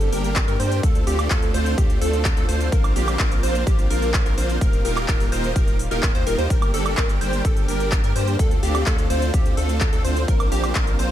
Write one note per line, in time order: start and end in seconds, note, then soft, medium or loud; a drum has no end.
0.00 0.10 G1 loud
0.00 0.81 D3 medium
0.00 0.81 G3 medium
0.00 0.81 A#3 medium
0.00 0.81 G4 medium
0.00 closed hi-hat soft
0.00 impact medium
0.12 0.46 G1 loud
0.12 0.45 G3 medium
0.12 0.45 A#3 medium
0.12 0.45 D4 medium
0.12 0.45 G4 medium
0.12 0.45 A#4 medium
0.12 open hi-hat loud
0.24 closed hi-hat soft
0.36 kick loud
0.36 clap loud
0.36 closed hi-hat medium
0.48 0.57 G2 loud
0.48 0.57 G3 medium
0.48 0.57 A#3 medium
0.48 0.57 D4 medium
0.48 0.57 G4 medium
0.48 0.57 A#4 medium
0.48 0.57 A#4 loud
0.48 closed hi-hat soft
0.60 0.81 G2 loud
0.60 0.80 G3 medium
0.60 0.80 A#3 medium
0.60 0.80 D4 medium
0.60 0.80 G4 medium
0.60 0.80 C5 medium
0.60 open hi-hat loud
0.72 closed hi-hat soft
0.83 1.05 D2 loud
0.83 4.58 D3 medium
0.83 2.70 A3 medium
0.83 1.04 A3 medium
0.83 1.04 C4 medium
0.83 2.70 C4 medium
0.83 1.04 D4 medium
0.83 1.04 F4 medium
0.83 6.46 F4 medium
0.83 1.04 A4 medium
0.83 kick loud
0.83 closed hi-hat medium
0.95 closed hi-hat soft
1.07 1.28 D2 loud
1.07 1.28 A3 medium
1.07 1.28 C4 medium
1.07 1.28 D4 medium
1.07 1.28 F4 medium
1.07 1.28 G4 loud
1.07 open hi-hat loud
1.19 closed hi-hat soft
1.19 high woodblock medium
1.30 1.52 D2 loud
1.30 1.51 A3 medium
1.30 1.51 C4 medium
1.30 1.51 D4 medium
1.30 1.51 F4 medium
1.30 1.51 A4 loud
1.30 1.51 A4 medium
1.30 kick loud
1.30 clap loud
1.30 closed hi-hat medium
1.42 closed hi-hat soft
1.54 1.75 D2 loud
1.54 1.75 A3 loud
1.54 1.75 C4 medium
1.54 1.75 D4 medium
1.54 1.75 F4 medium
1.54 1.75 C5 loud
1.54 open hi-hat loud
1.66 closed hi-hat soft
1.78 1.99 D2 loud
1.78 1.99 A3 medium
1.78 1.99 C4 medium
1.78 1.99 D4 medium
1.78 1.99 F4 medium
1.78 1.99 G4 medium
1.78 kick loud
1.78 closed hi-hat loud
1.90 closed hi-hat soft
2.01 2.34 D2 loud
2.01 2.34 A3 medium
2.01 2.34 C4 medium
2.01 2.34 D4 medium
2.01 2.34 F4 medium
2.01 2.34 A4 medium
2.01 open hi-hat loud
2.13 closed hi-hat soft
2.25 kick loud
2.25 clap loud
2.25 closed hi-hat medium
2.37 2.46 D2 medium
2.37 2.46 A3 medium
2.37 2.46 C4 medium
2.37 2.46 D4 medium
2.37 2.46 F4 medium
2.37 2.46 A4 medium
2.37 closed hi-hat soft
2.49 2.70 D2 loud
2.49 2.69 A3 medium
2.49 2.69 C4 medium
2.49 2.69 D4 medium
2.49 2.69 F4 medium
2.49 2.69 C5 medium
2.49 open hi-hat loud
2.61 closed hi-hat soft
2.72 2.94 A#1 loud
2.72 2.93 A#3 medium
2.72 8.35 A#3 medium
2.72 2.93 C4 medium
2.72 4.59 C4 medium
2.72 2.93 D4 medium
2.72 2.93 F4 medium
2.72 2.93 A#4 medium
2.72 kick loud
2.72 closed hi-hat medium
2.84 closed hi-hat soft
2.84 high woodblock medium
2.96 3.17 A#1 loud
2.96 3.17 A#3 medium
2.96 3.17 C4 medium
2.96 3.17 D4 medium
2.96 3.17 F4 medium
2.96 3.17 G4 loud
2.96 open hi-hat loud
3.08 closed hi-hat soft
3.08 high woodblock medium
3.19 3.41 A#1 loud
3.19 3.40 A#3 medium
3.19 3.40 C4 medium
3.19 3.40 D4 medium
3.19 3.40 F4 medium
3.19 3.40 A#4 loud
3.19 kick loud
3.19 clap loud
3.19 closed hi-hat medium
3.32 closed hi-hat soft
3.43 3.64 A#1 loud
3.43 3.64 A#3 medium
3.43 3.64 C4 medium
3.43 3.64 D4 medium
3.43 3.64 F4 medium
3.43 3.64 C5 loud
3.43 open hi-hat loud
3.55 closed hi-hat soft
3.67 3.88 A#1 loud
3.67 3.88 A#3 medium
3.67 3.88 C4 medium
3.67 3.88 D4 medium
3.67 3.88 F4 medium
3.67 3.88 G4 medium
3.67 kick loud
3.67 closed hi-hat medium
3.79 closed hi-hat soft
3.90 4.24 A#1 loud
3.90 4.23 A#3 medium
3.90 4.23 C4 medium
3.90 4.23 D4 medium
3.90 4.23 F4 medium
3.90 4.23 A#4 medium
3.90 open hi-hat loud
4.02 closed hi-hat soft
4.14 kick loud
4.14 clap loud
4.14 closed hi-hat medium
4.26 4.35 A#1 loud
4.26 4.35 A#3 medium
4.26 4.35 C4 medium
4.26 4.35 D4 medium
4.26 4.35 F4 medium
4.26 4.35 A#4 medium
4.26 closed hi-hat soft
4.38 4.59 A#1 loud
4.38 4.58 A#3 medium
4.38 4.58 C4 medium
4.38 4.58 D4 medium
4.38 4.58 F4 medium
4.38 4.58 C5 medium
4.38 open hi-hat loud
4.50 closed hi-hat soft
4.61 4.83 D#1 loud
4.61 6.48 D#3 medium
4.61 8.36 G3 medium
4.61 4.82 A#3 medium
4.61 4.82 D#4 medium
4.61 4.82 F4 medium
4.61 4.82 G4 medium
4.61 4.82 A#4 medium
4.61 kick loud
4.61 closed hi-hat medium
4.73 closed hi-hat soft
4.85 5.06 D#1 loud
4.85 5.06 A#3 medium
4.85 5.06 D#4 medium
4.85 5.06 F4 medium
4.85 5.06 G4 medium
4.85 5.06 A#4 loud
4.85 open hi-hat loud
4.97 clap soft
4.97 closed hi-hat soft
4.97 high woodblock medium
5.08 5.30 D#1 loud
5.08 5.29 A#3 medium
5.08 5.29 D#4 medium
5.08 5.29 F4 medium
5.08 5.29 G4 medium
5.08 5.29 A#4 medium
5.08 kick loud
5.08 clap loud
5.08 closed hi-hat medium
5.20 open hi-hat medium
5.32 5.53 D#1 loud
5.32 5.53 A#3 medium
5.32 5.53 D#4 medium
5.32 5.53 F4 medium
5.32 5.53 G4 medium
5.32 5.53 C5 loud
5.32 open hi-hat loud
5.44 closed hi-hat soft
5.56 5.89 D#1 loud
5.56 5.77 A#3 medium
5.56 5.77 D#4 medium
5.56 5.77 F4 medium
5.56 5.77 G4 medium
5.56 5.77 A#4 medium
5.56 kick loud
5.56 closed hi-hat medium
5.68 closed hi-hat soft
5.79 open hi-hat loud
5.91 6.01 D#1 loud
5.91 6.00 A#3 medium
5.91 6.00 D#4 medium
5.91 6.00 F4 medium
5.91 6.00 G4 medium
5.91 6.00 A#4 loud
5.91 closed hi-hat soft
6.03 6.12 D#1 loud
6.03 6.12 A#3 medium
6.03 6.12 D#4 medium
6.03 6.12 F4 medium
6.03 6.12 G4 medium
6.03 6.12 A#4 medium
6.03 kick loud
6.03 clap loud
6.03 closed hi-hat medium
6.15 6.24 D#2 loud
6.15 6.24 A#3 medium
6.15 6.24 D#4 medium
6.15 6.24 F4 medium
6.15 6.24 G4 medium
6.15 6.24 C5 loud
6.15 closed hi-hat soft
6.27 6.36 D#1 loud
6.27 6.37 A#3 medium
6.27 6.37 D#4 medium
6.27 6.37 F4 medium
6.27 6.37 G4 medium
6.27 6.37 A#4 medium
6.27 open hi-hat loud
6.38 6.48 D#2 loud
6.38 6.49 A#3 medium
6.38 6.49 D#4 medium
6.38 6.49 F4 medium
6.38 6.49 G4 medium
6.38 6.49 C5 medium
6.38 closed hi-hat soft
6.50 6.72 G1 loud
6.50 11.11 D3 medium
6.50 6.71 G3 medium
6.50 6.71 A#3 medium
6.50 6.71 D4 medium
6.50 6.71 G4 medium
6.50 8.37 G4 medium
6.50 6.71 A#4 medium
6.50 kick loud
6.50 closed hi-hat medium
6.62 closed hi-hat soft
6.62 high woodblock medium
6.74 6.95 G1 medium
6.74 6.95 G3 medium
6.74 6.95 A#3 medium
6.74 6.95 D4 medium
6.74 6.95 G4 medium
6.74 6.95 A4 loud
6.74 open hi-hat loud
6.86 closed hi-hat soft
6.86 high woodblock medium
6.97 7.19 G1 loud
6.97 7.18 G3 medium
6.97 7.18 A#3 medium
6.97 7.18 D4 medium
6.97 7.18 G4 medium
6.97 7.18 A#4 medium
6.97 7.18 A#4 loud
6.97 kick loud
6.97 clap loud
6.97 closed hi-hat medium
7.09 closed hi-hat soft
7.21 7.42 G1 loud
7.21 7.42 G3 medium
7.21 7.42 A#3 medium
7.21 7.42 D4 medium
7.21 7.42 G4 medium
7.21 7.42 C5 loud
7.21 open hi-hat loud
7.33 closed hi-hat soft
7.45 7.66 G1 loud
7.45 7.66 G3 medium
7.45 7.66 A#3 medium
7.45 7.65 D4 medium
7.45 7.66 G4 medium
7.45 7.66 A4 medium
7.45 kick loud
7.45 closed hi-hat medium
7.57 closed hi-hat soft
7.68 8.01 G1 medium
7.68 8.01 G3 medium
7.68 8.01 A#3 medium
7.68 8.01 D4 medium
7.68 8.01 G4 medium
7.68 8.01 A#4 medium
7.68 open hi-hat loud
7.80 closed hi-hat soft
7.92 kick loud
7.92 clap loud
7.92 closed hi-hat medium
8.04 8.13 G2 loud
8.04 8.13 G3 medium
8.04 8.13 A#3 medium
8.04 8.13 D4 medium
8.04 8.13 G4 medium
8.04 8.13 A#4 medium
8.04 closed hi-hat soft
8.15 8.37 G2 loud
8.15 8.36 G3 medium
8.15 8.36 A#3 medium
8.15 8.36 D4 medium
8.15 8.36 G4 medium
8.15 8.36 C5 medium
8.15 open hi-hat loud
8.28 closed hi-hat soft
8.39 8.61 D2 loud
8.39 8.60 A3 medium
8.39 10.26 A3 medium
8.39 8.60 C4 medium
8.39 11.11 C4 medium
8.39 8.60 D4 medium
8.39 8.60 F4 medium
8.39 11.11 F4 medium
8.39 8.60 A4 medium
8.39 kick loud
8.39 closed hi-hat medium
8.51 closed hi-hat soft
8.63 8.84 D2 loud
8.63 8.84 A3 medium
8.63 8.84 C4 medium
8.63 8.84 D4 medium
8.63 8.84 F4 medium
8.63 8.84 G4 loud
8.63 open hi-hat loud
8.75 closed hi-hat soft
8.75 high woodblock medium
8.86 9.08 D2 loud
8.86 9.07 A3 medium
8.86 9.07 C4 medium
8.86 9.07 D4 medium
8.86 9.07 F4 medium
8.86 9.07 A4 medium
8.86 9.07 A4 loud
8.86 kick loud
8.86 clap loud
8.86 closed hi-hat medium
8.98 closed hi-hat soft
9.10 9.31 D2 loud
9.10 9.31 A3 medium
9.10 9.31 C4 medium
9.10 9.31 D4 medium
9.10 9.31 F4 medium
9.10 9.31 C5 loud
9.10 open hi-hat loud
9.22 closed hi-hat soft
9.34 9.55 D2 medium
9.34 9.54 A3 medium
9.34 9.54 C4 medium
9.34 9.54 D4 medium
9.34 9.54 F4 medium
9.34 9.54 G4 medium
9.34 kick loud
9.34 closed hi-hat medium
9.46 closed hi-hat soft
9.57 9.90 D2 medium
9.57 9.90 A3 medium
9.57 9.90 C4 medium
9.57 9.90 D4 medium
9.57 9.90 F4 medium
9.57 9.90 A4 medium
9.57 open hi-hat loud
9.69 closed hi-hat soft
9.81 kick loud
9.81 clap loud
9.81 closed hi-hat medium
9.93 10.02 D2 loud
9.93 10.02 A3 medium
9.93 10.02 C4 medium
9.93 10.02 D4 medium
9.93 10.02 F4 medium
9.93 10.02 A4 medium
9.93 closed hi-hat soft
10.04 10.26 D2 loud
10.04 10.25 A3 medium
10.04 10.25 C4 medium
10.04 10.25 D4 medium
10.04 10.25 F4 medium
10.04 10.25 C5 medium
10.04 open hi-hat loud
10.16 closed hi-hat soft
10.28 10.50 A#1 loud
10.28 10.49 A#3 medium
10.28 11.11 A#3 medium
10.28 10.49 C4 medium
10.28 10.49 D4 medium
10.28 10.49 F4 medium
10.28 10.49 A#4 medium
10.28 kick loud
10.28 closed hi-hat medium
10.40 closed hi-hat soft
10.40 high woodblock medium
10.52 10.73 A#1 loud
10.52 10.73 A#3 medium
10.52 10.73 C4 medium
10.52 10.73 D4 medium
10.52 10.73 F4 medium
10.52 10.73 G4 loud
10.52 open hi-hat loud
10.64 closed hi-hat soft
10.64 high woodblock medium
10.75 10.97 A#1 loud
10.75 10.96 A#3 medium
10.75 10.96 C4 medium
10.75 10.96 D4 medium
10.75 10.96 F4 medium
10.75 10.96 A#4 medium
10.75 10.96 A#4 loud
10.75 kick loud
10.75 clap loud
10.75 closed hi-hat loud
10.87 closed hi-hat soft
10.99 11.11 A#1 loud
10.99 11.11 A#3 medium
10.99 11.11 C4 medium
10.99 11.11 D4 medium
10.99 11.11 F4 medium
10.99 11.11 C5 loud
10.99 open hi-hat loud